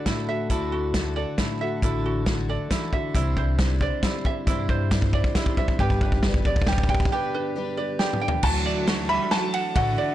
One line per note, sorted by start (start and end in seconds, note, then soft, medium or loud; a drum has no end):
0.00 0.50 D3 medium
0.00 0.94 D4 medium
0.00 0.29 F#4 medium
0.00 0.30 F#4 soft
0.00 0.51 A4 medium
0.00 0.73 D5 medium
0.06 0.48 A2 medium
0.06 0.28 A3 medium
0.06 0.49 E4 medium
0.06 0.29 E4 medium
0.06 0.29 F#4 medium
0.06 0.27 A4 medium
0.06 kick medium
0.06 snare medium
0.06 closed hi-hat medium
0.29 0.50 E4 soft
0.29 0.50 F#4 soft
0.29 1.62 F#4 medium
0.29 0.51 A4 soft
0.29 1.17 E5 medium
0.50 1.23 D2 medium
0.50 0.99 D3 medium
0.50 1.82 D3 medium
0.50 0.94 A3 medium
0.50 1.38 E4 medium
0.50 0.96 E4 medium
0.50 0.95 F#4 medium
0.50 1.16 A4 medium
0.50 0.95 A4 medium
0.50 kick medium
0.50 closed hi-hat medium
0.72 1.61 F#4 medium
0.94 1.17 A3 medium
0.94 2.27 D4 medium
0.94 1.17 E4 medium
0.94 1.16 F#4 medium
0.94 1.15 A4 medium
0.94 kick medium
0.94 snare medium
0.94 closed hi-hat medium
1.16 1.38 E4 soft
1.16 1.39 F#4 soft
1.16 1.39 A4 soft
1.16 1.81 A4 medium
1.16 2.05 D5 medium
1.38 1.81 A2 medium
1.38 1.61 A3 medium
1.38 1.83 E4 medium
1.38 1.61 E4 medium
1.38 1.61 F#4 medium
1.38 1.60 A4 medium
1.38 kick medium
1.38 snare medium
1.38 closed hi-hat medium
1.61 1.82 E4 soft
1.61 1.82 F#4 soft
1.61 1.81 F#4 medium
1.61 1.83 A4 medium
1.61 2.49 E5 medium
1.82 2.56 A1 medium
1.82 2.27 D3 medium
1.82 2.71 D3 medium
1.82 2.24 A3 medium
1.82 2.26 E4 medium
1.82 2.70 E4 medium
1.82 2.26 F#4 medium
1.82 2.27 A4 medium
1.82 2.49 A4 medium
1.82 kick medium
1.82 closed hi-hat medium
2.06 2.94 F#4 medium
2.26 2.49 A3 medium
2.26 3.13 D4 medium
2.26 2.49 E4 medium
2.26 2.48 F#4 medium
2.26 2.47 A4 medium
2.26 kick medium
2.26 snare medium
2.26 closed hi-hat medium
2.48 2.70 E4 soft
2.48 2.70 F#4 soft
2.48 2.71 A4 soft
2.48 3.13 A4 medium
2.48 3.16 D5 medium
2.70 2.93 E3 medium
2.70 2.93 A3 medium
2.70 2.93 E4 medium
2.70 3.14 E4 medium
2.70 2.93 F#4 medium
2.70 2.92 A4 medium
2.70 kick medium
2.70 snare medium
2.70 closed hi-hat medium
2.93 3.16 D3 medium
2.93 3.15 E4 soft
2.93 3.16 F#4 soft
2.93 3.15 A4 soft
2.93 3.15 E5 medium
2.93 kick medium
3.14 3.88 C2 medium
3.14 4.44 C2 medium
3.14 4.43 C3 medium
3.14 3.59 C3 medium
3.14 5.77 D3 medium
3.14 3.59 E3 medium
3.14 3.31 G3 medium
3.14 3.58 G3 medium
3.14 5.77 C4 medium
3.14 3.59 D4 medium
3.14 3.31 E4 medium
3.14 5.77 E4 medium
3.14 4.03 E4 medium
3.14 3.59 E4 medium
3.14 3.31 C5 medium
3.14 3.59 C5 medium
3.14 3.31 D5 medium
3.14 kick medium
3.14 closed hi-hat medium
3.37 3.53 G3 medium
3.37 3.53 E4 medium
3.37 4.26 C5 medium
3.37 3.54 D5 medium
3.37 kick medium
3.58 3.81 G3 medium
3.58 3.75 G3 medium
3.58 3.81 D4 medium
3.58 3.75 E4 medium
3.58 3.81 E4 medium
3.58 3.75 C5 medium
3.58 3.80 C5 medium
3.58 3.75 D5 medium
3.58 kick medium
3.58 snare medium
3.58 closed hi-hat medium
3.81 3.97 G3 medium
3.81 4.03 G3 soft
3.81 4.03 D4 soft
3.81 3.97 E4 medium
3.81 4.04 E4 soft
3.81 3.97 C5 medium
3.81 4.04 C5 soft
3.81 4.69 D5 medium
3.81 3.98 D5 medium
3.81 kick medium
4.02 4.19 G3 medium
4.02 4.48 G3 medium
4.02 4.48 D4 medium
4.02 4.19 E4 medium
4.02 4.46 E4 medium
4.02 4.47 E4 medium
4.02 4.19 C5 medium
4.02 4.48 C5 medium
4.02 4.19 D5 medium
4.02 kick medium
4.02 snare medium
4.02 closed hi-hat medium
4.25 4.41 G3 medium
4.25 4.41 E4 medium
4.25 4.41 C5 medium
4.25 4.41 D5 medium
4.25 5.13 E5 medium
4.25 kick medium
4.46 5.76 C2 medium
4.46 5.20 G2 loud
4.46 5.75 C3 medium
4.46 4.92 C3 medium
4.46 4.92 E3 medium
4.46 4.63 G3 medium
4.46 4.91 G3 medium
4.46 4.92 D4 medium
4.46 4.63 E4 medium
4.46 5.35 E4 medium
4.46 4.92 E4 medium
4.46 4.63 C5 medium
4.46 4.92 C5 medium
4.46 4.63 D5 loud
4.46 kick medium
4.46 closed hi-hat medium
4.69 4.85 G3 medium
4.69 4.85 E4 medium
4.69 5.57 C5 medium
4.69 4.86 C5 medium
4.69 4.86 D5 medium
4.69 kick medium
4.91 5.08 G3 medium
4.91 5.14 G3 medium
4.91 5.14 D4 medium
4.91 5.07 E4 medium
4.91 5.13 E4 medium
4.91 5.08 C5 medium
4.91 5.12 C5 medium
4.91 5.08 D5 medium
4.91 kick loud
4.91 snare medium
4.91 closed hi-hat medium
5.02 kick loud
5.13 5.30 G3 medium
5.13 5.34 G3 soft
5.13 5.34 D4 soft
5.13 5.29 E4 medium
5.13 5.35 E4 soft
5.13 5.36 C5 medium
5.13 5.30 C5 medium
5.13 5.80 D5 medium
5.13 5.30 D5 medium
5.13 kick loud
5.24 kick loud
5.35 5.58 G3 medium
5.35 5.52 G3 medium
5.35 5.58 D4 medium
5.35 5.80 E4 medium
5.35 5.57 E4 medium
5.35 5.52 E4 medium
5.35 5.52 C5 medium
5.35 5.56 C5 medium
5.35 5.52 D5 medium
5.35 kick loud
5.35 snare medium
5.35 closed hi-hat medium
5.46 kick loud
5.57 5.73 G3 medium
5.57 5.79 G3 soft
5.57 5.79 D4 soft
5.57 5.73 E4 medium
5.57 5.80 E4 soft
5.57 5.80 C5 medium
5.57 5.74 C5 medium
5.57 5.74 D5 medium
5.57 5.80 E5 medium
5.57 kick loud
5.68 kick loud
5.79 6.52 G1 loud
5.79 7.08 G1 medium
5.79 7.08 G2 medium
5.79 8.41 D3 medium
5.79 6.22 G3 medium
5.79 5.96 G3 medium
5.79 8.41 B3 medium
5.79 5.96 D4 medium
5.79 6.24 D4 medium
5.79 6.67 G4 medium
5.79 8.42 G4 medium
5.79 6.24 G4 medium
5.79 5.96 B4 medium
5.79 6.24 B4 loud
5.79 5.96 D5 loud
5.79 kick loud
5.90 kick loud
6.01 6.18 G3 medium
6.01 6.18 D4 medium
6.01 6.18 B4 medium
6.01 6.89 B4 medium
6.01 6.18 D5 medium
6.01 kick loud
6.12 kick loud
6.23 6.46 G3 medium
6.23 6.40 G3 medium
6.23 6.46 D4 medium
6.23 6.40 D4 medium
6.23 6.46 G4 medium
6.23 6.40 B4 medium
6.23 6.44 B4 medium
6.23 6.40 D5 medium
6.23 kick loud
6.23 snare medium
6.34 kick loud
6.45 6.62 G3 medium
6.45 6.61 D4 medium
6.45 6.68 D4 soft
6.45 6.68 G4 medium
6.45 6.68 B4 medium
6.45 6.62 B4 medium
6.45 6.62 D5 medium
6.45 7.34 D5 medium
6.45 kick loud
6.56 kick loud
6.62 kick loud
6.67 6.84 G3 medium
6.67 6.90 G3 medium
6.67 6.84 D4 medium
6.67 6.90 D4 medium
6.67 7.11 G4 medium
6.67 6.90 G4 medium
6.67 6.84 B4 medium
6.67 6.84 D5 medium
6.67 kick loud
6.67 snare medium
6.71 6.88 B4 medium
6.71 kick loud
6.78 kick loud
6.83 kick loud
6.89 7.05 G3 medium
6.89 7.06 D4 medium
6.89 7.11 D4 soft
6.89 7.12 G4 soft
6.89 7.12 B4 medium
6.89 7.06 B4 medium
6.89 7.06 D5 medium
6.89 7.77 G5 medium
6.89 kick loud
6.95 kick loud
7.00 kick loud
7.05 kick loud
7.11 8.40 G1 medium
7.11 8.40 G2 medium
7.11 7.28 G3 loud
7.11 7.54 G3 medium
7.11 7.28 D4 medium
7.11 7.55 D4 loud
7.11 7.98 G4 medium
7.11 7.56 G4 loud
7.11 7.28 B4 medium
7.11 7.57 B4 loud
7.11 7.28 D5 loud
7.34 7.50 G3 medium
7.34 7.50 D4 medium
7.34 8.22 B4 medium
7.34 7.50 B4 medium
7.34 7.50 D5 medium
7.56 7.78 G3 medium
7.56 7.72 G3 medium
7.56 7.72 D4 medium
7.56 7.78 D4 medium
7.56 7.78 G4 medium
7.56 7.72 B4 medium
7.56 7.77 B4 medium
7.56 7.72 D5 medium
7.77 7.94 G3 medium
7.77 7.94 D4 medium
7.77 7.99 D4 soft
7.77 8.00 G4 medium
7.77 8.00 B4 medium
7.77 7.94 B4 medium
7.77 8.44 D5 medium
7.77 7.94 D5 medium
7.99 8.43 G3 medium
7.99 8.16 G3 medium
7.99 8.16 D4 medium
7.99 8.44 D4 medium
7.99 8.44 G4 medium
7.99 8.16 B4 medium
7.99 8.44 B4 medium
7.99 8.16 D5 medium
7.99 snare medium
8.13 mid tom medium
8.21 8.38 G3 medium
8.21 8.38 D4 medium
8.21 8.38 B4 medium
8.21 8.38 D5 medium
8.21 8.44 G5 medium
8.28 floor tom loud
8.43 9.16 D2 loud
8.43 8.92 D3 medium
8.43 10.15 E3 medium
8.43 9.06 F#3 medium
8.43 8.86 A3 medium
8.43 10.15 D4 medium
8.43 8.88 E4 medium
8.43 8.86 F#4 medium
8.43 10.15 F#4 medium
8.43 8.88 F#4 medium
8.43 8.88 A4 loud
8.43 9.12 A5 loud
8.43 kick loud
8.43 crash loud
8.66 9.53 D5 medium
8.87 9.30 A3 medium
8.87 9.32 E4 medium
8.87 9.31 F#4 medium
8.87 9.32 F#4 medium
8.87 9.32 A4 medium
8.87 snare loud
8.87 ride medium
9.09 9.29 G3 loud
9.09 9.98 E5 medium
9.09 9.32 B5 loud
9.30 9.72 F#3 medium
9.30 9.74 A3 medium
9.30 9.76 E4 medium
9.30 9.75 F#4 medium
9.30 9.76 A4 medium
9.30 9.77 A5 loud
9.30 snare loud
9.30 ride medium
9.54 10.15 F#5 medium
9.54 ride medium
9.74 9.94 A1 loud
9.74 10.15 D3 medium
9.74 10.15 A3 loud
9.74 10.15 E4 loud
9.74 10.15 F#4 medium
9.74 10.15 A4 loud
9.74 10.15 F#5 medium
9.74 kick loud
9.74 ride medium
9.98 10.15 D5 medium